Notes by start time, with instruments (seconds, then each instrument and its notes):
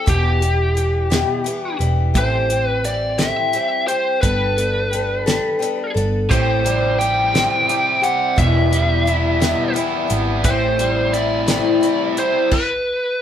0.06 picked electric bass E1, twelve-string acoustic guitar E2 B2 E3 G3 B3 G4, lead electric guitar G4, kick, closed hi-hat
0.41 twelve-string acoustic guitar E3 G3 B3 G4, closed hi-hat
0.75 twelve-string acoustic guitar E3 G3 B3 G4, closed hi-hat
1.10 twelve-string acoustic guitar E2 B2 E3 G3 B3 G4, snare, closed hi-hat
1.44 twelve-string acoustic guitar E3 G3 B3 G4, closed hi-hat
1.79 picked electric bass E1, twelve-string acoustic guitar E3 G3 B3 G4, closed hi-hat
2.14 picked electric bass A1, twelve-string acoustic guitar A2 E3 G3 C4 G4, lead electric guitar C5, kick, closed hi-hat
2.49 twelve-string acoustic guitar G3 C4 G4, closed hi-hat
2.67 lead electric guitar B4
2.84 twelve-string acoustic guitar E3 G3 C4 G4, lead electric guitar D5, closed hi-hat
3.18 twelve-string acoustic guitar A2 E3 G3 C4 G4, lead electric guitar E5, snare, closed hi-hat
3.52 twelve-string acoustic guitar E3 G3 C4 G4, closed hi-hat
3.87 twelve-string acoustic guitar G3 C4 G4, lead electric guitar C5, closed hi-hat
4.21 picked electric bass G1, twelve-string acoustic guitar G3 B3 D4 A4, lead electric guitar B4, kick, closed hi-hat
4.57 twelve-string acoustic guitar B3 D4 A4, closed hi-hat
4.91 twelve-string acoustic guitar G3 B3 D4 A4, closed hi-hat
5.26 twelve-string acoustic guitar G3 B3 D4 A4, snare, closed hi-hat
5.59 twelve-string acoustic guitar G3 B3 D4 A4, closed hi-hat
5.94 picked electric bass G1, twelve-string acoustic guitar B3 D4 A4, closed hi-hat
6.29 picked electric bass A1, twelve-string acoustic guitar A2 E3 G3 C4 G4, lead electric guitar C5, kick, closed hi-hat
6.64 twelve-string acoustic guitar G3 C4 G4, closed hi-hat
6.99 twelve-string acoustic guitar E3 G3 C4 G4, lead electric guitar G5, closed hi-hat
7.34 twelve-string acoustic guitar A2 E3 G3 C4 G4, snare, closed hi-hat
7.68 twelve-string acoustic guitar E3 G3 C4 G4, closed hi-hat
8.02 twelve-string acoustic guitar G3 C4 G4, lead electric guitar F#5, closed hi-hat
8.36 picked electric bass E1, twelve-string acoustic guitar E2 B2 E3 G3 B3 E4, lead electric guitar E5, kick, closed hi-hat
8.71 twelve-string acoustic guitar E3 G3 B3 E4, closed hi-hat
9.05 twelve-string acoustic guitar E3 G3 B3 E4, closed hi-hat
9.40 twelve-string acoustic guitar E2 B2 E3 G3 B3 E4, snare, closed hi-hat
9.73 twelve-string acoustic guitar E3 G3 B3 E4, closed hi-hat
10.08 picked electric bass G#1, twelve-string acoustic guitar E3 G3 B3 E4, closed hi-hat
10.44 picked electric bass A1, twelve-string acoustic guitar A2 E3 G3 C4 E4, lead electric guitar C5, kick, closed hi-hat
10.78 twelve-string acoustic guitar G3 C4 E4, closed hi-hat
11.12 twelve-string acoustic guitar E3 G3 C4 E4, lead electric guitar D5, closed hi-hat
11.47 twelve-string acoustic guitar A2 E3 G3 C4 E4, snare, closed hi-hat
11.81 twelve-string acoustic guitar E3 G3 C4 E4, closed hi-hat
12.17 twelve-string acoustic guitar G3 C4 E4, lead electric guitar C5, closed hi-hat
12.51 lead electric guitar B4, kick, crash